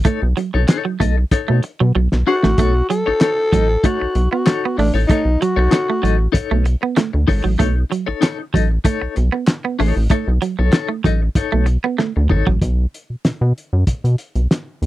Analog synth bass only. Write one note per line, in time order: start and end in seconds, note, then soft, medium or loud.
0.23 0.34 B1 loud
0.54 0.66 B1 medium
1.01 1.25 B1 medium
1.50 1.61 B2 medium
1.81 1.92 B2 loud
1.96 2.08 B1 loud
2.13 2.24 B1 medium
2.45 2.55 A1 medium
2.58 2.82 B1 loud
3.07 3.13 A1 soft
3.53 3.77 A1 medium
4.02 4.07 B1 soft
4.16 4.28 B1 loud
4.79 4.91 A1 medium
4.94 5.06 A1 medium
5.25 5.37 B1 medium
5.57 5.69 B1 loud
6.04 6.28 A1 medium
6.34 6.41 B1 medium
6.52 6.76 B1 medium
7.14 7.26 D2 medium
7.28 7.41 G#1 medium
7.45 7.57 A1 medium
7.60 7.84 B1 loud
8.08 8.14 A1 soft
8.54 8.78 A1 medium
9.02 9.08 B1 soft
9.17 9.30 B1 medium
9.80 9.93 A1 medium
9.97 10.08 A1 medium
10.28 10.39 B1 loud
10.59 10.70 B1 medium
11.05 11.29 A1 medium
11.36 11.42 B1 medium
11.54 11.78 B1 medium
12.17 12.28 D2 loud
12.31 12.44 G#1 medium
12.48 12.59 A1 medium
12.62 12.86 B1 loud
13.10 13.16 B2 soft
13.25 13.32 B2 soft
13.41 13.53 B2 loud
13.73 13.84 F#2 medium
13.87 13.94 B2 soft
14.04 14.16 B2 medium
14.36 14.47 B1 medium
14.82 14.86 D#2 medium